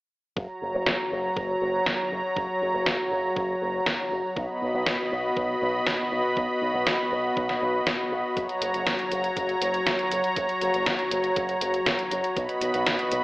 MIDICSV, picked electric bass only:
0, 0, Header, 1, 2, 480
1, 0, Start_track
1, 0, Key_signature, 6, "major"
1, 0, Tempo, 500000
1, 351, Time_signature, 4, 2, 24, 8
1, 12709, End_track
2, 0, Start_track
2, 0, Title_t, "Picked electric bass"
2, 0, Program_c, 0, 34
2, 351, Note_on_c, 0, 30, 85
2, 436, Note_off_c, 0, 30, 0
2, 592, Note_on_c, 0, 30, 68
2, 677, Note_off_c, 0, 30, 0
2, 712, Note_on_c, 0, 30, 82
2, 797, Note_off_c, 0, 30, 0
2, 833, Note_on_c, 0, 30, 93
2, 917, Note_off_c, 0, 30, 0
2, 1070, Note_on_c, 0, 30, 76
2, 1241, Note_off_c, 0, 30, 0
2, 1311, Note_on_c, 0, 30, 77
2, 1481, Note_off_c, 0, 30, 0
2, 1551, Note_on_c, 0, 30, 81
2, 1721, Note_off_c, 0, 30, 0
2, 1791, Note_on_c, 0, 30, 87
2, 1876, Note_off_c, 0, 30, 0
2, 2030, Note_on_c, 0, 30, 77
2, 2116, Note_off_c, 0, 30, 0
2, 2270, Note_on_c, 0, 30, 84
2, 2356, Note_off_c, 0, 30, 0
2, 2511, Note_on_c, 0, 30, 71
2, 2596, Note_off_c, 0, 30, 0
2, 2631, Note_on_c, 0, 30, 81
2, 2716, Note_off_c, 0, 30, 0
2, 2751, Note_on_c, 0, 30, 94
2, 2836, Note_off_c, 0, 30, 0
2, 2990, Note_on_c, 0, 30, 80
2, 3160, Note_off_c, 0, 30, 0
2, 3230, Note_on_c, 0, 30, 79
2, 3401, Note_off_c, 0, 30, 0
2, 3471, Note_on_c, 0, 30, 80
2, 3641, Note_off_c, 0, 30, 0
2, 3711, Note_on_c, 0, 30, 89
2, 3796, Note_off_c, 0, 30, 0
2, 3952, Note_on_c, 0, 30, 78
2, 4037, Note_off_c, 0, 30, 0
2, 4191, Note_on_c, 0, 35, 88
2, 4276, Note_off_c, 0, 35, 0
2, 4433, Note_on_c, 0, 35, 69
2, 4517, Note_off_c, 0, 35, 0
2, 4554, Note_on_c, 0, 35, 84
2, 4637, Note_off_c, 0, 35, 0
2, 4671, Note_on_c, 0, 35, 93
2, 4756, Note_off_c, 0, 35, 0
2, 4912, Note_on_c, 0, 35, 82
2, 5082, Note_off_c, 0, 35, 0
2, 5152, Note_on_c, 0, 35, 78
2, 5322, Note_off_c, 0, 35, 0
2, 5392, Note_on_c, 0, 35, 82
2, 5562, Note_off_c, 0, 35, 0
2, 5633, Note_on_c, 0, 35, 88
2, 5717, Note_off_c, 0, 35, 0
2, 5872, Note_on_c, 0, 35, 74
2, 5956, Note_off_c, 0, 35, 0
2, 6113, Note_on_c, 0, 35, 86
2, 6197, Note_off_c, 0, 35, 0
2, 6351, Note_on_c, 0, 35, 72
2, 6436, Note_off_c, 0, 35, 0
2, 6471, Note_on_c, 0, 35, 82
2, 6556, Note_off_c, 0, 35, 0
2, 6594, Note_on_c, 0, 35, 92
2, 6677, Note_off_c, 0, 35, 0
2, 6832, Note_on_c, 0, 35, 81
2, 7001, Note_off_c, 0, 35, 0
2, 7073, Note_on_c, 0, 35, 79
2, 7242, Note_off_c, 0, 35, 0
2, 7311, Note_on_c, 0, 35, 81
2, 7481, Note_off_c, 0, 35, 0
2, 7553, Note_on_c, 0, 35, 88
2, 7637, Note_off_c, 0, 35, 0
2, 7793, Note_on_c, 0, 35, 75
2, 7877, Note_off_c, 0, 35, 0
2, 8032, Note_on_c, 0, 30, 85
2, 8117, Note_off_c, 0, 30, 0
2, 8271, Note_on_c, 0, 30, 70
2, 8356, Note_off_c, 0, 30, 0
2, 8391, Note_on_c, 0, 30, 82
2, 8476, Note_off_c, 0, 30, 0
2, 8513, Note_on_c, 0, 30, 92
2, 8597, Note_off_c, 0, 30, 0
2, 8751, Note_on_c, 0, 30, 82
2, 8921, Note_off_c, 0, 30, 0
2, 8992, Note_on_c, 0, 30, 82
2, 9162, Note_off_c, 0, 30, 0
2, 9230, Note_on_c, 0, 30, 83
2, 9401, Note_off_c, 0, 30, 0
2, 9472, Note_on_c, 0, 30, 88
2, 9557, Note_off_c, 0, 30, 0
2, 9712, Note_on_c, 0, 30, 76
2, 9797, Note_off_c, 0, 30, 0
2, 9952, Note_on_c, 0, 30, 90
2, 10037, Note_off_c, 0, 30, 0
2, 10193, Note_on_c, 0, 30, 72
2, 10277, Note_off_c, 0, 30, 0
2, 10312, Note_on_c, 0, 30, 84
2, 10397, Note_off_c, 0, 30, 0
2, 10431, Note_on_c, 0, 30, 96
2, 10516, Note_off_c, 0, 30, 0
2, 10671, Note_on_c, 0, 30, 81
2, 10841, Note_off_c, 0, 30, 0
2, 10911, Note_on_c, 0, 30, 80
2, 11081, Note_off_c, 0, 30, 0
2, 11152, Note_on_c, 0, 30, 85
2, 11322, Note_off_c, 0, 30, 0
2, 11392, Note_on_c, 0, 30, 87
2, 11477, Note_off_c, 0, 30, 0
2, 11632, Note_on_c, 0, 30, 75
2, 11717, Note_off_c, 0, 30, 0
2, 11872, Note_on_c, 0, 35, 90
2, 11957, Note_off_c, 0, 35, 0
2, 12114, Note_on_c, 0, 35, 73
2, 12198, Note_off_c, 0, 35, 0
2, 12235, Note_on_c, 0, 35, 85
2, 12318, Note_off_c, 0, 35, 0
2, 12352, Note_on_c, 0, 35, 94
2, 12437, Note_off_c, 0, 35, 0
2, 12593, Note_on_c, 0, 35, 84
2, 12709, Note_off_c, 0, 35, 0
2, 12709, End_track
0, 0, End_of_file